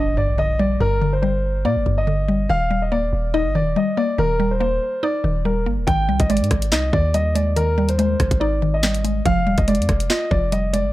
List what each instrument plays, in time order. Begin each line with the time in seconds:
Already playing: 808-style bass G1, synth pluck G2 D3 G3 D4, grand piano D#5, impact
0.17 synth pluck G2, grand piano D5
0.28 808-style bass A#1
0.38 synth pluck D3, grand piano D#5
0.59 synth pluck G3, grand piano D5
0.81 808-style bass G1, synth pluck G2, grand piano A#4
1.02 synth pluck D3
1.13 grand piano C5
1.22 synth pluck G3, grand piano C5
1.65 808-style bass A#2, synth pluck A#3, grand piano D5
1.76 808-style bass G1
1.86 808-style bass G1, synth pluck G2
1.98 grand piano D#5
2.07 synth pluck D3
2.28 synth pluck G3
2.49 808-style bass D#1, synth pluck D#3, grand piano F5
2.71 synth pluck G3
2.82 grand piano D#5
2.92 808-style bass D1, synth pluck A#3, grand piano D5
3.03 808-style bass D#1
3.13 808-style bass D#1
3.34 synth pluck D#4, grand piano D#5
3.45 808-style bass G1
3.55 synth pluck D#3, grand piano D5
3.61 808-style bass D#1
3.76 synth pluck G3, grand piano D#5
3.97 synth pluck A#3, grand piano D5
4.18 808-style bass D#1, synth pluck D#3, grand piano A#4
4.40 synth pluck G3
4.51 grand piano C5
4.60 synth pluck A#3, grand piano C5
5.03 synth pluck D#4, grand piano D5
5.24 808-style bass D#1, synth pluck D#3
5.45 synth pluck G3, grand piano A#4
5.66 808-style bass G1, synth pluck A#3
5.78 808-style bass D#1
5.87 808-style bass G#1, synth pluck D#3, grand piano G5, kick, closed hi-hat
6.09 808-style bass C2, synth pluck G3
6.20 808-style bass G#1, grand piano D#5, kick, closed hi-hat
6.29 synth pluck G#3, grand piano D5, closed hi-hat
6.37 closed hi-hat
6.41 808-style bass G#2, closed hi-hat
6.51 808-style bass G#1, kick, cross-stick, closed hi-hat
6.62 closed hi-hat
6.72 808-style bass C2, synth pluck D#4, grand piano D#5, snare, clap
6.93 808-style bass D#2, synth pluck D#3, grand piano D5, kick
7.14 synth pluck G3, grand piano D#5, closed hi-hat
7.35 synth pluck G#3, grand piano D5, closed hi-hat
7.56 synth pluck D#3, grand piano A#4, closed hi-hat
7.78 synth pluck G3
7.89 grand piano C5, closed hi-hat
7.99 synth pluck G#3, grand piano C5, closed hi-hat
8.20 808-style bass G#1, kick, cross-stick, closed hi-hat
8.31 808-style bass G#1, kick, closed hi-hat
8.40 synth pluck D#4, grand piano D5
8.62 synth pluck D#3
8.74 grand piano D#5
8.83 synth pluck G3, snare, clap, closed hi-hat
8.94 closed hi-hat
9.04 synth pluck G#3, closed hi-hat
9.26 808-style bass F1, synth pluck F3, grand piano F5, kick, closed hi-hat
9.47 808-style bass D#1, synth pluck G3
9.58 808-style bass F1, grand piano D#5, kick, closed hi-hat
9.68 synth pluck G#3, grand piano D5, closed hi-hat
9.75 closed hi-hat
9.79 808-style bass F2, closed hi-hat
9.89 808-style bass F1, kick, cross-stick, closed hi-hat
10.00 closed hi-hat
10.10 synth pluck F4, grand piano D#5, snare, clap
10.31 808-style bass F1, synth pluck F3, grand piano D5, kick
10.52 synth pluck G3, grand piano D#5, closed hi-hat
10.73 synth pluck G#3, grand piano D5, closed hi-hat
10.85 808-style bass G#1